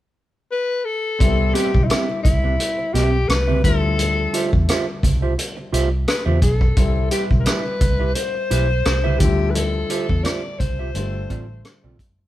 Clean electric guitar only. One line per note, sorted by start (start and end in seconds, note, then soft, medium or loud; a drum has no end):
1.54 1.71 C4 medium
1.54 1.71 G4 medium
1.54 1.71 B4 medium
1.54 1.71 E5 medium
1.90 2.06 C4 medium
1.90 2.06 G4 medium
1.90 2.06 B4 medium
1.90 2.06 E5 medium
2.25 muted clean electric guitar stroke soft
2.43 2.55 C4 soft
2.43 2.55 G4 soft
2.43 2.54 B4 soft
2.43 2.54 E5 soft
2.60 muted clean electric guitar stroke soft
2.79 muted clean electric guitar stroke soft
2.94 3.15 C4 medium
2.94 3.13 G4 medium
2.94 3.12 B4 medium
2.94 3.12 E5 medium
3.13 muted clean electric guitar stroke soft
3.30 muted clean electric guitar stroke soft
3.48 3.62 C4 medium
3.48 3.62 G4 medium
3.48 3.61 B4 medium
3.48 3.61 E5 medium
3.83 muted clean electric guitar stroke soft
4.34 4.49 F4 medium
4.34 4.50 G4 medium
4.34 4.50 C5 medium
4.34 4.50 E5 medium
4.69 4.84 F4 medium
4.69 4.85 G4 medium
4.69 4.85 C5 medium
4.69 4.85 E5 medium
5.04 muted clean electric guitar stroke soft
5.22 5.33 F4 soft
5.22 5.33 G4 soft
5.22 5.33 C5 soft
5.22 5.33 E5 soft
5.38 muted clean electric guitar stroke soft
5.57 muted clean electric guitar stroke soft
5.72 5.88 F4 medium
5.72 5.89 G4 medium
5.72 5.89 C5 medium
5.72 5.89 E5 medium
5.91 muted clean electric guitar stroke soft
6.08 muted clean electric guitar stroke soft
6.26 6.40 F4 medium
6.26 6.40 G4 medium
6.26 6.40 C5 medium
6.26 6.39 E5 medium
6.42 muted clean electric guitar stroke soft
6.61 muted clean electric guitar stroke soft
7.12 7.28 E4 medium
7.12 7.28 G4 medium
7.12 7.28 B4 medium
7.12 7.28 E5 medium
7.46 7.62 E4 medium
7.46 7.63 G4 soft
7.46 7.63 B4 medium
7.46 7.63 E5 medium
7.81 muted clean electric guitar stroke soft
7.99 8.11 E4 soft
7.99 8.11 G4 soft
7.99 8.11 B4 soft
7.99 8.10 E5 soft
8.16 muted clean electric guitar stroke soft
8.34 muted clean electric guitar stroke soft
8.51 8.67 E4 medium
8.51 8.67 G4 medium
8.51 8.67 B4 medium
8.51 8.67 E5 medium
8.86 muted clean electric guitar stroke soft
9.04 9.18 E4 soft
9.04 9.18 G4 medium
9.04 9.18 B4 medium
9.04 9.18 E5 medium
9.21 muted clean electric guitar stroke soft
9.39 muted clean electric guitar stroke soft
9.90 10.06 F4 medium
9.90 10.06 G4 medium
9.90 10.06 C5 medium
9.90 10.07 E5 medium
10.24 10.40 F4 medium
10.24 10.41 G4 medium
10.24 10.41 C5 medium
10.24 10.41 E5 medium
10.60 muted clean electric guitar stroke soft
10.79 10.90 F4 soft
10.79 10.90 G4 soft
10.79 10.90 C5 soft
10.79 10.90 E5 medium
10.95 muted clean electric guitar stroke soft
11.14 muted clean electric guitar stroke soft
11.30 11.45 C4 medium
11.30 11.46 F4 medium
11.30 11.46 A4 medium
11.30 11.46 D5 medium
11.65 muted clean electric guitar stroke soft
11.84 11.98 C4 medium
11.84 11.97 F4 medium
11.84 11.97 A4 medium
11.84 11.97 D5 medium
12.00 muted clean electric guitar stroke soft
12.19 muted clean electric guitar stroke soft